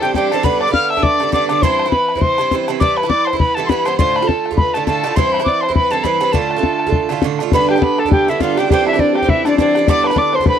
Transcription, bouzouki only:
0.03 0.14 G2 medium
0.03 0.15 E3 medium
0.03 0.16 C4 medium
0.03 0.16 D4 medium
0.15 0.31 G2 medium
0.15 0.32 E3 medium
0.15 0.33 C4 medium
0.15 0.33 D4 medium
0.32 0.42 G2 medium
0.32 0.44 E3 medium
0.32 0.45 C4 medium
0.32 0.45 D4 medium
0.43 0.67 G2 medium
0.43 0.68 D3 medium
0.43 0.68 B3 medium
0.43 0.66 D4 medium
0.68 0.98 D3 medium
0.68 0.97 B3 medium
0.68 0.96 D4 medium
0.97 1.20 D3 soft
0.97 1.21 B3 soft
0.97 1.20 D4 soft
1.20 1.31 G2 medium
1.20 1.32 D3 medium
1.20 1.33 B3 soft
1.20 1.34 D4 medium
1.32 1.48 G2 medium
1.32 1.49 D3 medium
1.32 1.50 B3 medium
1.32 1.51 D4 medium
1.49 1.62 G2 medium
1.49 1.63 D3 medium
1.49 1.63 B3 medium
1.49 1.64 D4 medium
1.63 1.86 G2 medium
1.63 1.86 E3 medium
1.63 1.86 C4 medium
1.63 1.84 E4 medium
1.86 2.16 E3 soft
1.86 2.16 C4 soft
1.86 2.14 E4 soft
2.15 2.38 E3 soft
2.15 2.39 C4 soft
2.15 2.38 E4 soft
2.38 2.51 G2 medium
2.38 2.52 E3 soft
2.38 2.52 C4 soft
2.38 2.52 E4 medium
2.52 2.67 G2 medium
2.52 2.68 E3 medium
2.52 2.69 C4 medium
2.52 2.69 E4 medium
2.68 2.79 G2 medium
2.68 2.80 E3 medium
2.68 2.82 C4 medium
2.68 2.81 E4 medium
2.80 3.04 G2 medium
2.80 3.04 E3 medium
2.80 3.04 B3 medium
2.80 3.02 E4 medium
3.03 3.35 E3 soft
3.03 3.34 B3 soft
3.03 3.32 E4 medium
3.33 3.57 E3 soft
3.33 3.57 B3 soft
3.33 3.56 E4 soft
3.57 3.68 G2 medium
3.57 3.69 E3 medium
3.57 3.70 B3 medium
3.57 3.71 E4 medium
3.69 3.84 G2 soft
3.69 3.85 E3 medium
3.69 3.86 B3 medium
3.69 3.87 E4 medium
3.85 3.98 G2 medium
3.85 3.99 E3 medium
3.85 4.00 B3 medium
3.85 4.00 E4 medium
3.99 4.22 A2 medium
3.99 4.22 D3 medium
3.99 4.23 A3 medium
3.99 4.21 F4 medium
4.22 4.53 D3 soft
4.22 4.51 A3 medium
4.22 4.49 F4 medium
4.51 4.75 D3 soft
4.51 4.75 A3 soft
4.51 4.74 F4 soft
4.75 4.86 A2 medium
4.75 4.87 D3 medium
4.75 4.88 A3 medium
4.75 4.88 F4 soft
4.87 5.02 A2 medium
4.87 5.03 D3 medium
4.87 5.04 A3 medium
4.87 5.05 F4 medium
5.04 5.16 A2 medium
5.04 5.16 D3 medium
5.04 5.18 A3 medium
5.04 5.18 F4 medium
5.16 5.40 G2 medium
5.16 5.40 E3 medium
5.16 5.40 C4 medium
5.16 5.38 E4 medium
5.40 5.70 E3 soft
5.40 5.68 C4 soft
5.40 5.67 E4 medium
5.69 5.90 E3 soft
5.69 5.92 C4 soft
5.69 5.92 E4 soft
5.90 6.02 G2 medium
5.90 6.04 E3 medium
5.90 6.04 C4 medium
5.90 6.05 E4 medium
6.04 6.19 G2 medium
6.04 6.20 E3 medium
6.04 6.21 C4 medium
6.04 6.22 E4 medium
6.20 6.33 G2 medium
6.20 6.34 E3 medium
6.20 6.34 C4 medium
6.20 6.34 E4 medium
6.33 6.57 A2 medium
6.33 6.57 D3 medium
6.33 6.57 A3 medium
6.33 6.55 F4 medium
6.56 6.89 D3 soft
6.56 6.87 A3 soft
6.56 6.85 F4 soft
6.87 7.09 D3 soft
6.87 7.10 A3 soft
6.87 7.10 F4 medium
7.09 7.21 A2 soft
7.09 7.23 D3 medium
7.09 7.24 A3 medium
7.09 7.24 F4 medium
7.23 7.39 A2 medium
7.23 7.40 D3 medium
7.23 7.41 A3 medium
7.23 7.41 F4 medium
7.40 7.53 A2 medium
7.40 7.53 D3 medium
7.40 7.54 A3 medium
7.40 7.54 F4 medium
7.53 7.76 G2 medium
7.53 7.76 D3 medium
7.53 7.76 B3 medium
7.53 7.75 D4 medium
7.76 8.08 D3 soft
7.76 8.06 B3 medium
7.76 8.05 D4 soft
8.06 8.28 D3 soft
8.06 8.29 B3 soft
8.06 8.28 D4 soft
8.28 8.39 G2 medium
8.28 8.41 D3 medium
8.28 8.42 B3 medium
8.28 8.42 D4 medium
8.41 8.56 G2 medium
8.41 8.57 D3 medium
8.41 8.58 B3 medium
8.41 8.59 D4 medium
8.57 8.70 G2 medium
8.57 8.71 D3 medium
8.57 8.71 B3 medium
8.57 8.72 D4 medium
8.72 8.94 G2 medium
8.72 8.94 E3 medium
8.72 8.94 C4 medium
8.72 8.93 D4 medium
8.94 9.24 E3 soft
8.94 9.23 C4 medium
8.94 9.21 D4 medium
9.23 9.45 E3 soft
9.23 9.46 C4 soft
9.23 9.46 D4 soft
9.46 9.58 G2 medium
9.46 9.59 E3 medium
9.46 9.59 C4 medium
9.46 9.60 D4 medium
9.59 9.74 G2 medium
9.59 9.76 E3 medium
9.59 9.76 C4 medium
9.59 9.77 D4 medium
9.76 9.87 G2 soft
9.76 9.88 E3 medium
9.76 9.89 C4 medium
9.76 9.90 D4 medium
9.88 10.11 G2 medium
9.88 10.11 D3 medium
9.88 10.12 B3 medium
9.88 10.10 D4 medium
10.11 10.42 D3 soft
10.11 10.41 B3 medium
10.11 10.40 D4 medium
10.41 10.59 D3 soft
10.41 10.59 B3 soft
10.41 10.59 D4 soft

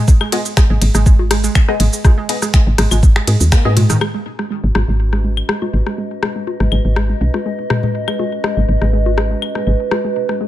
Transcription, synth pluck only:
0.21 0.26 G#3 medium
0.32 0.38 G#3 medium
0.57 0.63 G#3 medium
0.70 0.75 G#3 medium
0.95 1.00 G#3 medium
1.06 1.12 G#3 medium
1.31 1.37 G#3 medium
1.44 1.49 G#3 medium
1.68 1.74 G#3 medium
1.80 1.86 G#3 medium
2.05 2.10 G#3 medium
2.18 2.23 G#3 medium
2.42 2.47 G#3 medium
2.54 2.59 G#3 medium
2.78 2.84 G#3 medium
2.91 2.96 G#3 medium
3.16 3.21 G#3 medium
3.28 3.36 G#3 medium
3.52 3.61 A#3 medium
3.65 3.70 G#4 medium
3.77 3.85 G#3 medium
3.90 3.93 D#3 loud
4.14 4.19 G#3 medium
4.39 4.44 G#3 medium
4.50 4.56 G#3 medium
4.75 4.81 G#3 medium
4.88 4.93 G#3 medium
5.13 5.18 G#3 medium
5.24 5.30 G#3 medium
5.49 5.55 G#3 medium
5.62 5.67 G#3 medium
5.87 5.92 G#3 medium
5.98 6.04 G#3 medium
6.23 6.28 G#3 medium
6.36 6.41 G#3 medium
6.60 6.65 G#3 medium
6.72 6.78 G#3 medium
6.96 7.02 G#3 medium
7.09 7.15 G#3 medium
7.34 7.39 G#3 medium
7.46 7.51 G#3 medium
7.70 7.76 G#3 medium
7.83 7.88 G#3 medium
8.08 8.13 G#3 medium
8.19 8.25 G#3 medium
8.44 8.50 G#3 medium
8.57 8.62 G#3 medium
8.82 8.87 G#3 medium
8.93 8.99 G#3 medium
9.18 9.23 G#3 medium
9.31 9.36 G#3 medium
9.55 9.60 G#3 medium
9.67 9.73 G#3 medium
9.91 9.97 G#3 medium
10.04 10.10 G#3 medium
10.29 10.34 G#3 medium
10.41 10.46 G#3 medium

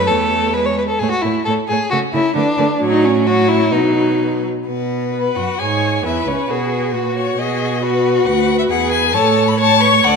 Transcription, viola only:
0.09 0.57 A3 medium
0.55 0.81 G#3 soft
1.02 1.10 A3 medium
1.24 1.32 A3 soft
1.47 1.55 A3 soft
1.71 1.79 A3 soft
1.92 2.00 A3 medium
2.14 2.22 A3 soft
2.36 2.44 A3 medium
2.59 2.67 A3 medium
2.81 3.22 F#3 medium
3.26 3.71 F#3 medium
3.73 4.46 F#3 medium
5.13 5.56 B4 soft
5.61 6.04 C#5 soft
6.05 6.52 B4 soft
6.50 6.95 G#4 medium
6.94 7.40 F#4 soft
7.38 7.82 G#4 medium
7.83 8.72 F#4 medium
8.70 9.15 G#4 medium
9.16 9.59 A4 medium
9.59 10.08 C#5 medium
10.06 10.16 D5 medium

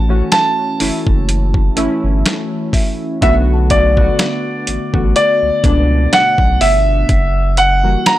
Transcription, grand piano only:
0.00 0.31 A5 loud
0.32 2.70 A5 medium
3.22 3.33 E5 medium
3.71 5.12 D5 medium
5.16 6.16 D5 medium
6.13 6.62 F#5 loud
6.61 7.61 E5 medium
7.58 8.08 F#5 loud
8.07 8.19 A#5 loud

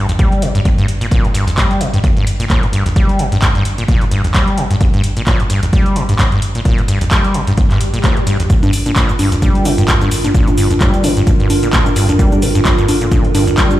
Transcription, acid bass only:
0.09 0.12 F2 loud
0.19 0.44 G3 medium
0.42 0.49 A#2 loud
0.55 0.61 G2 loud
0.65 0.70 G2 medium
0.78 0.87 G2 loud
1.01 1.07 A#2 medium
1.11 1.26 A#2 medium
1.24 1.28 F2 loud
1.34 1.45 G2 medium
1.47 1.51 F2 loud
1.57 1.82 G3 medium
1.80 1.88 A#2 loud
1.93 1.99 G2 medium
2.04 2.08 G2 medium
2.17 2.25 G2 medium
2.40 2.45 A#2 medium
2.50 2.64 A#2 loud
2.63 2.66 F2 loud
2.73 2.84 G2 medium
2.86 2.89 F2 loud
2.96 3.21 G3 medium
3.19 3.26 A#2 loud
3.32 3.38 G2 loud
3.42 3.47 G2 medium
3.55 3.64 G2 loud
3.78 3.84 A#2 medium
3.88 4.03 A#2 loud
4.01 4.05 F2 medium
4.12 4.22 G2 medium
4.25 4.28 F2 loud
4.35 4.59 G3 medium
4.58 4.65 A#2 medium
4.71 4.76 G2 loud
4.81 4.85 G2 medium
4.94 5.02 G2 loud
5.17 5.22 A#2 medium
5.27 5.41 A#2 medium
5.40 5.43 F2 loud
5.50 5.61 G2 medium
5.63 5.66 F2 loud
5.73 5.97 G3 medium
5.96 6.03 A#2 loud
6.09 6.15 G2 loud
6.19 6.23 G2 medium
6.32 6.40 G2 loud
6.55 6.61 A#2 medium
6.65 6.80 A#2 loud
6.78 6.82 F2 loud
6.88 6.99 G2 medium
7.01 7.05 F2 medium
7.11 7.36 G3 medium
7.34 7.42 A#2 loud
7.47 7.53 G2 loud
7.58 7.62 G2 medium
7.71 7.79 G2 loud
7.94 7.99 A#2 medium
8.04 8.18 A#2 loud
8.17 8.20 F2 medium
8.27 8.38 G2 medium
8.40 8.43 F2 medium
8.50 8.54 G2 medium
8.63 8.71 G2 loud
8.86 8.92 A#2 medium
8.96 9.10 A#2 loud
9.09 9.12 F2 loud
9.19 9.30 G2 medium
9.32 9.36 F2 loud
9.42 9.67 G3 medium
9.65 9.72 A#2 loud
9.78 9.84 G2 loud
9.88 9.93 G2 medium
10.01 10.10 G2 loud
10.24 10.30 A#2 medium
10.35 10.49 A#2 loud
10.48 10.51 F2 loud
10.58 10.68 G2 medium
10.71 10.74 F2 loud
10.81 11.05 G3 medium
11.04 11.11 A#2 medium
11.17 11.22 G2 loud
11.27 11.31 G2 medium
11.40 11.48 G2 loud
11.63 11.69 A#2 medium
11.73 11.88 A#2 loud
11.86 11.89 F2 loud
11.96 12.07 G2 medium
12.09 12.12 F2 loud
12.19 12.44 G3 medium
12.42 12.49 A#2 loud
12.55 12.61 G2 loud
12.65 12.70 G2 medium
12.78 12.87 G2 loud
13.01 13.07 A#2 medium
13.11 13.26 A#2 loud
13.24 13.28 F2 medium
13.34 13.45 G2 medium
13.47 13.51 F2 loud
13.58 13.80 G3 medium

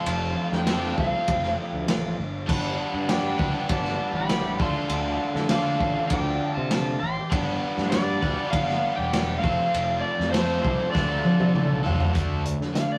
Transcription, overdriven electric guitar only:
0.00 0.65 F3 medium
0.00 0.65 A3 loud
0.00 0.65 C4 loud
0.00 0.66 F4 medium
0.00 0.66 A4 loud
0.67 2.16 F3 medium
0.67 2.17 A3 medium
0.67 2.17 C4 medium
0.67 2.17 F4 medium
0.67 2.18 A4 medium
2.47 3.37 G3 medium
2.47 3.38 B3 medium
2.47 3.40 D4 medium
2.47 3.37 B4 loud
3.38 4.59 G3 medium
3.38 4.58 B3 medium
3.38 4.59 D4 medium
3.38 4.58 B4 medium
4.59 5.48 D3 loud
4.59 5.50 D4 loud
4.59 5.49 F4 loud
4.59 5.49 A4 medium
5.50 6.99 D3 medium
5.50 7.00 D4 medium
5.50 7.00 F4 medium
5.50 7.01 A4 medium
7.30 8.20 G3 medium
7.30 8.21 B3 medium
7.30 8.20 D4 medium
7.30 8.21 B4 medium
8.22 9.42 G3 medium
8.22 9.42 B3 medium
8.22 9.42 D4 medium
8.22 9.41 B4 medium
9.42 10.32 F3 medium
9.42 10.32 A3 medium
9.42 10.32 C4 medium
9.42 10.32 F4 medium
9.42 10.33 A4 medium
10.33 10.92 F3 medium
10.33 10.92 A3 medium
10.33 10.93 C4 medium
10.33 10.93 F4 medium
10.33 10.93 A4 medium
10.94 11.83 D3 medium
10.94 11.83 D4 loud
10.94 11.83 F4 loud
10.94 11.83 A4 medium
11.84 12.12 D3 medium
11.84 12.12 D4 medium
11.84 12.13 F4 medium
11.84 12.13 A4 medium
12.13 12.42 D3 medium
12.13 12.43 A3 medium
12.13 12.43 D4 medium
12.44 12.72 D3 medium
12.44 12.72 A3 medium
12.74 12.98 D3 medium
12.74 12.98 A3 medium

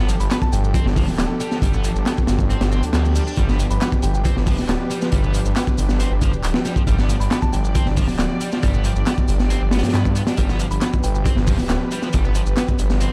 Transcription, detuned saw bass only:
0.00 0.13 G1 loud
0.20 0.27 G1 loud
0.53 0.74 G1 loud
0.74 0.83 G1 soft
0.85 1.07 G1 loud
1.08 1.16 D1 soft
1.18 1.25 D1 medium
1.62 1.88 G1 loud
1.95 2.02 G1 loud
2.28 2.54 G1 loud
2.61 2.82 G1 loud
2.83 2.91 D2 soft
2.94 3.20 D2 loud
3.37 3.64 G1 loud
3.70 3.77 G1 loud
4.03 4.25 G1 loud
4.25 4.34 G1 soft
4.36 4.57 G1 loud
4.58 4.67 D1 soft
4.69 4.76 D1 medium
5.12 5.39 G1 loud
5.46 5.52 G1 loud
5.78 6.04 G1 loud
6.11 6.32 G1 loud
6.33 6.42 D1 soft
6.44 6.51 D1 medium
6.87 7.14 G1 loud
7.20 7.27 G1 loud
7.53 7.75 G1 loud
7.75 7.84 G1 soft
7.86 8.07 G1 loud
8.08 8.17 D1 soft
8.19 8.26 D1 medium
8.63 8.89 G1 loud
8.96 9.02 G1 loud
9.28 9.55 G1 loud
9.61 9.83 G1 medium
9.83 9.92 G2 soft
9.94 10.20 G2 loud
10.38 10.64 G1 loud
10.71 10.78 G1 loud
11.04 11.25 G1 loud
11.26 11.35 G1 soft
11.37 11.58 G1 loud
11.59 11.67 D1 soft
11.69 11.76 D1 medium
12.14 12.40 G1 loud
12.46 12.53 G1 loud
12.79 13.05 G1 loud

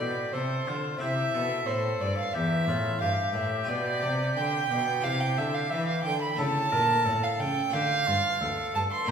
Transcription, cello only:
0.00 0.32 B2 medium
0.34 0.67 C3 medium
0.67 1.00 D3 soft
1.01 1.33 C3 medium
1.34 1.67 B2 medium
1.67 2.00 A2 medium
2.00 2.33 G2 medium
2.34 2.69 E2 medium
2.68 3.00 A2 medium
3.01 3.36 G2 medium
3.34 3.67 A2 medium
3.67 4.03 B2 medium
4.02 4.36 C3 medium
4.37 4.70 D3 medium
4.70 5.06 B2 medium
5.04 5.40 C3 medium
5.38 5.71 D3 medium
5.72 6.05 E3 medium
6.06 6.38 D3 soft
6.39 6.70 C#3 medium
6.73 7.04 A#2 medium
7.07 7.38 A2 medium
7.40 7.72 C#3 medium
7.74 8.05 D3 medium
8.08 8.39 G2 medium
8.41 8.72 D2 medium
8.75 9.06 G2 medium

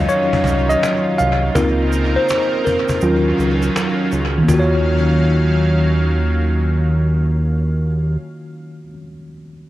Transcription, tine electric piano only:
0.00 1.52 F#3 medium
0.00 1.52 C#4 medium
0.00 1.52 F4 medium
0.00 0.08 C#5 medium
0.00 0.69 D#5 loud
0.00 1.18 F5 loud
0.08 0.71 C#5 loud
0.69 1.20 D#5 loud
1.18 1.56 F5 medium
1.55 2.98 A#3 medium
1.55 2.98 C4 soft
1.55 2.98 D#4 soft
1.55 2.99 F4 medium
1.55 2.18 A#4 medium
2.16 2.67 C5 loud
2.65 4.08 A#4 medium
3.02 4.45 F#3 medium
3.02 4.45 C#4 medium
3.02 4.45 F4 medium
4.38 8.82 D#3 medium
4.43 8.84 A#3 medium
4.48 8.87 F4 medium
4.54 8.90 F#4 medium
4.60 8.93 C#5 medium

